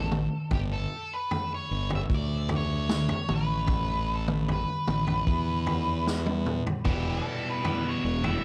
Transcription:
0.00 0.27 A1 medium
0.12 mid tom medium
0.51 0.85 G1 medium
0.51 0.59 G4 medium
0.51 kick loud
0.51 floor tom medium
0.73 1.13 A4 medium
1.14 1.53 B4 medium
1.31 floor tom medium
1.54 1.89 C#5 medium
1.71 2.04 G1 medium
1.90 floor tom medium
1.95 2.00 E5 medium
2.10 3.11 D2 medium
2.10 kick loud
2.15 2.49 D5 loud
2.49 floor tom medium
2.56 3.34 C#5 loud
2.89 snare medium
2.89 mid tom medium
3.09 floor tom medium
3.29 4.64 A1 medium
3.29 mid tom medium
3.35 4.13 B4 medium
3.67 kick loud
3.67 floor tom medium
4.15 4.24 A4 medium
4.28 mid tom medium
4.48 6.04 B4 medium
4.48 floor tom medium
4.88 5.22 A1 medium
4.88 mid tom medium
5.07 floor tom medium
5.27 6.61 E2 medium
5.27 kick loud
5.67 floor tom medium
6.07 snare medium
6.26 high tom medium
6.46 mid tom medium
6.67 floor tom medium
6.85 7.19 E1 medium
6.85 7.62 E2 medium
6.85 7.63 B2 medium
6.85 7.63 E3 medium
6.85 7.64 G3 medium
6.85 7.64 B3 medium
6.85 7.63 E4 loud
6.85 kick loud
6.85 floor tom medium
6.92 7.09 G4 medium
7.10 7.48 A4 medium
7.49 7.88 B4 medium
7.64 8.24 E2 medium
7.64 8.24 B2 medium
7.64 7.84 E3 medium
7.64 7.84 G3 medium
7.64 7.84 B3 loud
7.64 7.82 E4 medium
7.64 floor tom medium
7.84 8.03 E3 medium
7.84 8.04 G3 medium
7.84 8.04 B3 medium
7.84 8.04 E4 medium
7.89 8.24 C#5 medium
8.04 8.38 E1 medium
8.04 muted overdriven electric guitar stroke soft
8.23 8.44 E3 medium
8.23 8.44 G3 medium
8.23 8.44 B3 medium
8.23 8.44 E4 medium
8.23 8.44 E5 medium
8.23 floor tom medium

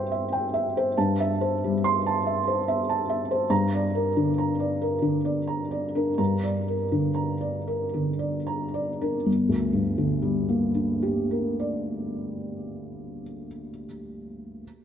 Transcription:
0.00 0.92 G2 soft
0.00 0.97 G3 soft
0.00 0.77 C5 soft
0.00 0.12 E5 soft
0.00 0.32 G5 soft
0.00 0.97 C6 soft
0.12 0.45 E5 soft
0.32 0.66 G5 soft
0.54 0.87 E5 soft
0.77 0.97 C5 soft
0.97 3.48 G2 medium
0.97 1.31 A5 soft
1.20 1.53 E5 soft
1.41 1.74 C5 soft
1.64 1.96 G3 soft
1.84 2.16 C6 medium
2.06 2.38 A5 soft
2.27 2.59 E5 soft
2.48 2.80 C5 soft
2.68 3.01 E5 soft
2.89 3.22 A5 soft
3.10 3.43 E5 soft
3.31 3.51 C5 soft
3.50 6.14 G2 medium
3.50 3.84 A#5 medium
3.75 4.08 D5 soft
3.95 4.29 A#4 soft
4.16 4.51 D3 soft
4.16 4.50 D4 soft
4.38 4.72 A#5 soft
4.60 4.94 D5 soft
4.82 5.16 A#4 soft
5.02 5.38 D3 soft
5.02 5.38 D4 soft
5.25 5.61 D5 soft
5.47 5.85 A#5 soft
5.71 6.09 D5 soft
5.95 6.34 D4 soft
5.95 6.33 A#4 soft
6.18 9.23 G2 soft
6.18 6.57 A#5 soft
6.43 6.83 D5 soft
6.68 7.08 A#4 soft
6.92 7.33 D3 soft
6.92 7.32 D4 soft
7.14 7.57 A#5 soft
7.41 7.83 D5 soft
7.67 8.10 A#4 soft
7.94 8.36 D3 soft
7.94 8.36 D4 soft
8.19 8.62 D5 soft
8.47 8.90 A#5 soft
8.74 9.16 D5 soft
9.01 9.27 D4 soft
9.01 9.27 A#4 soft
9.26 13.22 G1 soft
9.49 13.45 D2 soft
9.73 13.69 G2 soft
9.98 13.86 D3 soft
10.22 13.85 G3 soft
10.49 13.86 A#3 soft
10.74 13.85 D4 soft
11.03 13.85 G4 soft
11.31 13.86 A#4 soft
11.60 13.85 D5 soft

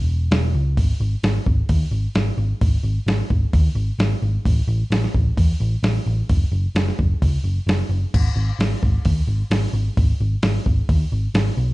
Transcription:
0.00 0.29 E1 medium
0.31 0.53 E1 medium
0.31 snare loud
0.31 open hi-hat medium
0.54 0.76 C#2 medium
0.77 0.92 G#1 medium
0.77 kick loud
0.77 open hi-hat medium
1.00 1.15 G#1 medium
1.23 1.38 G#1 medium
1.23 snare medium
1.23 open hi-hat medium
1.46 1.61 G#1 medium
1.46 kick medium
1.69 1.84 D#2 medium
1.69 kick loud
1.69 open hi-hat medium
1.91 2.06 G#1 medium
2.15 2.30 G#1 medium
2.15 snare loud
2.15 open hi-hat medium
2.37 2.52 G#1 medium
2.61 2.76 G#1 loud
2.61 kick loud
2.61 open hi-hat medium
2.83 2.98 G#1 medium
3.06 3.21 G#1 medium
3.06 snare loud
3.06 open hi-hat medium
3.30 3.45 G#1 medium
3.30 kick medium
3.53 3.68 D#2 medium
3.53 kick loud
3.53 open hi-hat medium
3.75 3.90 G#1 medium
3.98 4.13 G#1 medium
3.98 snare loud
3.98 open hi-hat soft
4.22 4.37 G#1 medium
4.45 4.60 A1 loud
4.45 kick loud
4.45 open hi-hat medium
4.67 4.82 A1 medium
4.90 5.05 A1 medium
4.90 snare loud
4.90 open hi-hat medium
5.04 snare soft
5.14 5.29 A1 medium
5.14 kick medium
5.37 5.52 E2 medium
5.37 kick loud
5.37 open hi-hat medium
5.60 5.75 A1 medium
5.83 5.97 A1 medium
5.83 snare loud
5.83 open hi-hat medium
6.06 6.21 A1 medium
6.29 6.44 F#1 medium
6.29 kick loud
6.29 open hi-hat medium
6.52 6.66 F#1 medium
6.75 6.89 F#1 medium
6.75 snare loud
6.75 open hi-hat medium
6.88 snare soft
6.99 7.13 F#1 medium
6.99 kick medium
7.22 7.36 C#2 loud
7.22 kick loud
7.22 open hi-hat medium
7.44 7.58 F#1 medium
7.67 7.81 F#1 medium
7.67 snare loud
7.67 open hi-hat medium
7.89 8.04 F#1 medium
8.14 8.28 G#1 medium
8.14 kick loud
8.14 crash medium
8.35 8.50 G#1 medium
8.59 8.74 G#1 medium
8.59 snare loud
8.59 open hi-hat medium
8.83 8.97 G#1 medium
8.83 kick medium
9.05 9.20 D#2 medium
9.05 kick loud
9.05 open hi-hat medium
9.27 9.42 G#1 medium
9.50 9.65 G#1 medium
9.50 snare loud
9.50 open hi-hat medium
9.73 9.88 G#1 medium
9.97 10.12 G#1 medium
9.97 kick loud
9.97 open hi-hat medium
10.20 10.35 G#1 medium
10.43 10.58 G#1 medium
10.43 snare loud
10.43 open hi-hat medium
10.66 10.81 G#1 medium
10.66 kick medium
10.89 11.04 D#2 medium
10.89 kick loud
10.89 open hi-hat medium
11.12 11.27 G#1 medium
11.34 11.49 G#1 medium
11.34 snare loud
11.34 open hi-hat soft
11.57 11.74 B1 medium

